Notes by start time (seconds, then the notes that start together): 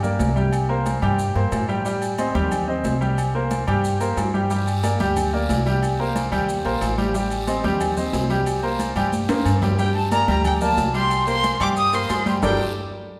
Already playing: G2
0.03 A#3 A#4 D5, high conga, low conga, maracas
0.19 C2, high conga, low timbale, low agogo, maracas
0.36 G3 G4 G5, high conga, maracas
0.53 high conga, low agogo, maracas
0.69 A#3 A#4 C5, high conga
0.86 high conga, low timbale, low agogo, maracas
1.02 G2 G3 G4 G5, high conga, low agogo, maracas
1.19 high conga, maracas
1.35 G2 A#3 A#4 C5, high conga, low agogo
1.52 A2, high conga, low timbale, low agogo, maracas
1.69 G3 G4 G5, maracas
1.85 G3 G4 G5, high conga, maracas
2.02 high conga, low agogo, maracas
2.18 C4 C5 D#5, high conga, low timbale, low agogo, maracas
2.35 D#2 G3 G4 G5, high conga, maracas
2.51 high conga, low conga, low agogo, maracas
2.68 C4 C5 D#5, high conga
2.84 C2, high conga, low timbale, low agogo, maracas
3.01 G3 G4 G5, high conga, maracas
3.18 high conga, low agogo, maracas
3.35 A#3 A#4 C5, high conga
3.51 high conga, low timbale, low agogo, maracas
3.67 G2 G3 G4 G5, high conga, low agogo, maracas
3.84 high conga, maracas
4.00 A#3 A#4 C5, high conga, low agogo, maracas
4.17 G2, high conga, low timbale, low agogo, maracas
4.34 G3 G4 G5, maracas
4.50 G3 G4 G5, high conga, long guiro, maracas
4.67 high conga, low agogo, maracas
4.83 A#3 A#4 D5, high conga, low timbale, low agogo, short guiro, maracas
5.00 D2 G3 G4 G5, high conga, short guiro, maracas
5.16 high conga, low conga, low agogo, long guiro, maracas
5.33 A#3 A#4 D5, high conga
5.49 C2, high conga, low timbale, low agogo, short guiro, maracas
5.66 G3 G4 G5, short guiro, maracas
5.82 high conga, low agogo, long guiro, maracas
5.99 A#3 A#4 C5, high conga
6.16 high conga, low timbale, low agogo, short guiro, maracas
6.32 D#2 G3 G4 G5, high conga, low agogo, short guiro, maracas
6.49 long guiro, maracas
6.65 A#1 A#3 A#4 C5, high conga, low agogo
6.81 A1, high conga, low timbale, low agogo, short guiro, maracas
6.98 G3 G4 G5, high conga, short guiro, maracas
7.14 G3 G4 G5, high conga, long guiro, maracas
7.31 high conga, low agogo, maracas
7.47 C4 C5 D#5, high conga, low timbale, low agogo, short guiro, maracas
7.64 D#2 G3 G4 G5, high conga, short guiro, maracas
7.80 high conga, low conga, low agogo, long guiro, maracas
7.97 C4 C5 D#5, high conga, low conga, maracas
8.13 C2, high conga, low timbale, low agogo, short guiro, maracas
8.30 G3 G4 G5, high conga, short guiro, maracas
8.46 high conga, low agogo, long guiro, maracas
8.63 A#3 A#4 C5, high conga
8.79 high conga, low timbale, low agogo, short guiro, maracas
8.96 G2 G3 G4 G5, high conga, low agogo, short guiro, maracas
9.12 high conga, long guiro, maracas
9.29 F2 A#3 A#4 C5, high conga, high timbale, low agogo, maracas
9.45 G2, low agogo, short guiro, maracas
9.62 G3 G4 G5, low conga, low timbale, short guiro, maracas
9.79 G3 G4 G5, high conga, long guiro, maracas
9.95 A5, high conga, low agogo
10.12 A#3 A#4 D5 A#5, high conga, low timbale, low agogo, short guiro, maracas
10.28 D2 G3 G4 G5 A#5, high conga, short guiro, maracas
10.45 G5, high conga, low conga, low agogo, long guiro, maracas
10.61 A#3 A#4 D5 A5, high conga, low conga, maracas
10.77 C2, high conga, low timbale, low agogo, short guiro, maracas
10.94 G3 G4 G5 C6, high conga, short guiro, maracas
11.10 high conga, low agogo, long guiro, maracas
11.27 A#3 A#4 C5 C6, high conga, maracas
11.43 high conga, low timbale, low agogo, short guiro, maracas
11.60 G2 G3 G4 G5 D6, high conga, low agogo, short guiro, maracas
11.77 D#6, high conga, long guiro, maracas
11.93 A#3 A#4 C5 C6, high conga, low agogo, maracas
12.10 G2, high conga, low timbale, low agogo, short guiro, maracas
12.26 G3 G4 G5, high conga, short guiro, maracas
12.42 G1 G3 D4 G4 A4 A#4 D5 G5, low conga, low timbale, long guiro, maracas